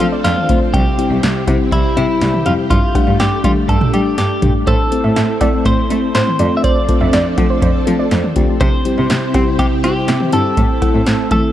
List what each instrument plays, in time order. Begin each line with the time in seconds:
Already playing: string machine F3 C4 D4 A4
0.00 cello F3, fm electric piano A3 C4 F4 A4, closed hi-hat
0.12 synth pluck D5
0.24 cello F2, clean electric guitar F4, snare, closed hi-hat
0.37 mid tom
0.49 cello D2, fm electric piano A3 C4 F4 C5, kick, closed hi-hat
0.74 cello C2, string machine C3 E4 G4, clean electric guitar G4, kick, closed hi-hat
0.98 fm electric piano G3 C4 E4 G4, closed hi-hat
1.11 cello C2
1.23 cello C2, snare, closed hi-hat
1.47 cello C3, fm electric piano G3 C4 E4 G4, kick, closed hi-hat, cowbell
1.72 cello C2, clean electric guitar E4, kick, closed hi-hat
1.97 cello C3, fm electric piano G3 C4 E4 G4, clean electric guitar E4, closed hi-hat
2.21 cello C2, snare, closed hi-hat
2.34 mid tom
2.46 cello F2, fm electric piano G3 C4 E4 G4, clean electric guitar F4, closed hi-hat
2.70 cello G2, string machine A3 D4, clean electric guitar F4, kick, closed hi-hat
2.95 fm electric piano G3 A3 D4 G4, kick, closed hi-hat, cowbell
3.07 cello G2
3.20 cello G2, clean electric guitar G4, snare, closed hi-hat
3.44 fm electric piano G3 A3 D4 G4, cello G3, clean electric guitar F4, kick, closed hi-hat, mid tom
3.69 cello G2, clean electric guitar A4, kick, closed hi-hat
3.81 mid tom
3.93 fm electric piano G3 A3 D4 G4, cello G3, clean electric guitar G4, closed hi-hat
4.18 cello G2, clean electric guitar G4, snare, closed hi-hat
4.42 cello G2, fm electric piano G3 A3 D4 G4, kick, closed hi-hat, mid tom
4.67 cello A2, string machine A3 C4 E4, clean electric guitar A4, synth pluck C5, kick, closed hi-hat
4.92 fm electric piano A3 C4 E4 A4, closed hi-hat
5.04 cello A2, synth pluck E5
5.16 cello A2, synth pluck E5, snare, closed hi-hat
5.41 cello A3, fm electric piano A3 C4 E4 A4, synth pluck D5, kick, closed hi-hat, cowbell
5.65 cello A2, clean electric guitar C5, kick, closed hi-hat
5.90 fm electric piano A3 C4 E4 A4, cello A3, closed hi-hat
6.15 cello A2, clean electric guitar C5, synth pluck C5, snare, closed hi-hat
6.27 mid tom
6.39 cello F2, string machine F3 D4 A4, fm electric piano A3 C4 F4 A4, synth pluck D5, closed hi-hat
6.57 clean electric guitar E5
6.64 synth pluck C5, clean electric guitar D5, kick, closed hi-hat
6.89 fm electric piano A3 C4 F4 A4, kick, closed hi-hat
7.01 cello F2, synth pluck E5
7.13 cello F2, synth pluck D5, snare, closed hi-hat
7.38 cello F3, fm electric piano A3 C4 F4 A4, kick, closed hi-hat, cowbell
7.50 synth pluck C5
7.62 cello F2, synth pluck C5, kick, closed hi-hat
7.87 cello F3, fm electric piano A3 C4 F4 A4, closed hi-hat
7.99 synth pluck D5
8.11 cello F2, snare, closed hi-hat
8.24 mid tom
8.36 cello D2, fm electric piano A3 C4 F4 G4, kick, closed hi-hat
8.60 string machine C3 C4 E4 G4, cello C3, clean electric guitar C5, kick, closed hi-hat
8.85 fm electric piano G3 C4 E4 G4, closed hi-hat
8.98 cello C3
9.10 cello C3, snare, closed hi-hat
9.34 fm electric piano G3 C4 E4 G4, cello C4, kick, closed hi-hat, cowbell
9.59 cello C3, clean electric guitar G4, kick, closed hi-hat
9.84 fm electric piano G3 C4 E4 G4, cello C4, clean electric guitar G4, closed hi-hat
10.08 cello C3, snare, closed hi-hat
10.21 mid tom
10.32 cello G2, fm electric piano G3 C4 E4 G4, clean electric guitar A4, closed hi-hat
10.57 cello A2, string machine A3, kick, closed hi-hat
10.82 fm electric piano A3 C4 E4 A4, kick, closed hi-hat, cowbell
10.94 cello A2
11.06 cello A2, snare, closed hi-hat
11.31 cello A3, fm electric piano A3 C4 E4 A4, clean electric guitar A4, kick, closed hi-hat, mid tom